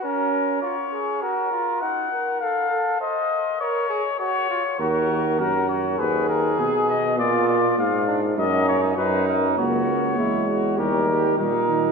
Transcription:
0.03 C#4 A#4
0.62 F4 C#5
0.93 G#4
1.22 F#4 A#4
1.52 F4
1.82 D#4 F#5
2.12 A#4
2.41 A4 F5
2.71 A4
3.01 C5 D#5
3.61 A#4 C#5
3.90 G#4
4.20 F#4 C#5
4.50 F4
4.79 D#2 F#4 A#4
5.39 F#2 F#4 A#4
5.69 C#5
5.98 D#2 G#4 B4
6.29 A#4
6.58 B2 G#4
6.90 D#5
7.18 A#2 F4 D5
7.49 D5
7.77 G#2 F4 F5
8.08 D4
8.38 F#2 D#4 D#5
8.68 C#5
8.98 F#2 D#4 B4
9.28 A#4
9.58 C#2 A#3 F#4 C#5
10.17 E2 G#3 E4
10.48 F#4
10.77 D#2 G3 G4 A#4
11.08 G4
11.38 A#2 G3 D#4 A#4
11.68 D#3

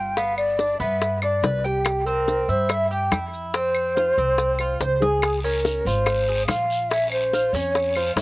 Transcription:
Already playing: G1 F4 G5
0.17 B3 F5, high bongo, maracas
0.38 D5, claves, maracas
0.59 D4, high bongo, maracas
0.80 G2 B3 E5, high bongo, maracas
1.02 high bongo, maracas
1.22 D4 D5, high bongo, claves, maracas
1.43 C2 B4, high bongo, low bongo, maracas
1.64 G4, high bongo, maracas
1.85 high bongo, claves, maracas
2.06 C4 A#4, maracas
2.28 high bongo, maracas
2.48 G2 E4 C5, maracas
2.69 E5, high bongo, claves, maracas
2.91 G4 G5, maracas
3.12 F2 E4, high bongo, low bongo, claves, maracas
3.33 maracas
3.54 C4 C5, high bongo, maracas
3.75 claves, maracas
3.97 F4, high bongo, maracas
4.18 C2 C4, high bongo, maracas
4.38 high bongo, maracas
4.59 F4, high bongo, claves, maracas
4.80 C#2 C5, high bongo, maracas
5.00 G#4, low bongo, maracas
5.22 high bongo, long guiro, claves, maracas
5.44 C#4 A#4, maracas
5.65 high bongo, short guiro, maracas
5.85 G#1 F4 C5, short guiro, maracas
6.06 high bongo, long guiro, claves, maracas
6.28 G#4, maracas
6.47 A#1 F4 F5, high bongo, low bongo, short guiro, claves, maracas
6.70 short guiro, maracas
6.90 C#4 E5, high bongo, long guiro, maracas
7.12 C5, claves, maracas
7.33 F4, high bongo, short guiro, maracas
7.53 F2 C#4 C#5, high bongo, short guiro, maracas
7.75 high bongo, long guiro, maracas
7.96 F4 C5, high bongo, claves, maracas
8.16 F#2 C#5 E5, high bongo, low bongo, short guiro, maracas

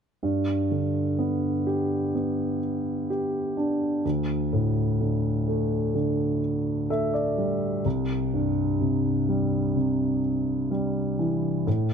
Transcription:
0.23 G2
0.71 D3
1.19 B3
1.67 G4
2.15 B3
3.10 G4
3.57 D4
4.05 D2
4.53 A2
5.01 D3
5.48 A3
5.95 D3
6.90 A3 E5
7.14 D5
7.38 G3
7.85 C2
8.33 G2
8.81 C3
9.29 G3
9.76 C3
10.71 G3
11.19 E3
11.67 A2

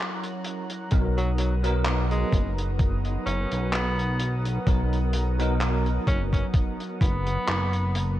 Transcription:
Already playing: F#3 C#4 E4 A#4 C#5 F#5 A#5 F#6
0.24 closed hi-hat
0.44 closed hi-hat
0.70 closed hi-hat
0.91 B1 F#3 B3 D#4 A#4 F#5 D#6, kick, closed hi-hat
1.17 F#3, closed hi-hat
1.38 F#3, closed hi-hat
1.63 F#3 B3 D#4 A#4, closed hi-hat
1.85 clap, closed hi-hat
2.11 G#3, closed hi-hat
2.32 F#1, kick, closed hi-hat
2.58 closed hi-hat
2.79 kick, closed hi-hat
3.05 closed hi-hat
3.26 F#1 C#4, closed hi-hat
3.52 B1, closed hi-hat
3.72 B3, clap, closed hi-hat
3.99 closed hi-hat
4.20 closed hi-hat
4.45 closed hi-hat
4.66 B1 F#3 B3 D#4 A#4, kick, closed hi-hat
4.93 closed hi-hat
5.13 closed hi-hat
5.38 F#3 B3 D#4 A#4, closed hi-hat
5.61 clap, closed hi-hat
5.86 closed hi-hat
6.07 F#1 C#4, kick, closed hi-hat
6.33 C#4, kick, closed hi-hat
6.54 kick, closed hi-hat
6.80 closed hi-hat
7.01 F#1 B3, kick, closed hi-hat
7.27 closed hi-hat
7.48 F#1, clap, closed hi-hat
7.73 closed hi-hat
7.95 closed hi-hat

